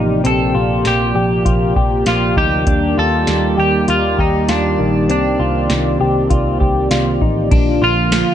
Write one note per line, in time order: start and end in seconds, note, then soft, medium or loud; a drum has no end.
0.00 0.21 A1 medium
0.00 2.63 C3 medium
0.00 2.63 F3 medium
0.00 7.48 A#3 medium
0.00 0.24 D#4 medium
0.00 7.48 G4 medium
0.00 0.21 A#4 medium
0.00 2.63 D5 medium
0.24 0.51 A#1 medium
0.24 0.55 C4 medium
0.24 0.87 A4 medium
0.24 closed hi-hat medium
0.55 0.82 A#1 medium
0.55 1.15 F4 medium
0.85 1.12 A#1 medium
0.85 1.73 G4 medium
0.85 snare medium
0.85 closed hi-hat medium
1.15 1.42 A#1 medium
1.15 1.45 G4 medium
1.45 1.72 A#1 medium
1.45 1.76 F4 medium
1.45 kick medium
1.45 closed hi-hat medium
1.76 2.03 A#1 medium
1.76 2.06 G4 medium
1.76 kick medium
2.06 2.33 A#1 medium
2.06 2.37 F4 medium
2.06 snare medium
2.06 closed hi-hat medium
2.37 2.63 D2 medium
2.37 2.67 D#4 medium
2.37 2.99 G4 medium
2.37 kick medium
2.67 2.94 D#2 medium
2.67 5.07 D#3 medium
2.67 5.07 G3 medium
2.67 2.97 D4 medium
2.67 7.48 D5 medium
2.67 kick loud
2.67 closed hi-hat medium
2.98 3.24 D#2 medium
2.98 3.57 F4 medium
2.98 3.59 A4 medium
3.27 3.54 D#2 medium
3.27 snare medium
3.27 closed hi-hat medium
3.58 3.84 D#2 medium
3.58 3.88 G4 medium
3.58 3.89 G4 medium
3.88 4.15 D#2 medium
3.88 4.19 F4 medium
3.88 4.20 F4 medium
3.88 closed hi-hat medium
4.19 4.45 D#2 medium
4.19 4.50 D#4 medium
4.19 4.48 G4 medium
4.19 kick medium
4.49 4.75 D#2 medium
4.49 5.10 D4 medium
4.49 4.79 F4 medium
4.49 snare loud
4.49 closed hi-hat medium
4.79 5.09 A#1 medium
4.79 5.09 D#3 medium
5.09 5.36 C2 medium
5.09 7.49 D#3 medium
5.09 7.49 C4 medium
5.09 5.40 C4 medium
5.09 6.88 D4 medium
5.09 closed hi-hat medium
5.39 5.66 C2 medium
5.39 6.00 F4 medium
5.70 5.97 C2 medium
5.70 snare loud
5.70 closed hi-hat medium
6.00 6.27 C2 medium
6.00 6.30 G4 medium
6.30 6.57 C2 medium
6.30 6.60 F4 medium
6.30 kick medium
6.30 closed hi-hat medium
6.60 6.88 C2 medium
6.60 6.90 G4 medium
6.60 kick medium
6.91 7.18 C2 medium
6.91 7.21 F4 medium
6.91 snare loud
6.91 closed hi-hat medium
7.21 7.48 A1 medium
7.21 7.51 D#4 medium
7.21 kick medium
7.51 7.78 A#1 loud
7.51 8.35 D3 medium
7.51 8.35 F3 medium
7.51 8.35 A#3 medium
7.51 7.82 D4 medium
7.51 8.35 F4 loud
7.51 kick loud
7.51 ride medium
7.82 8.22 A#1 medium
7.82 8.35 F4 medium
8.12 snare loud
8.12 ride medium
8.12 tambourine medium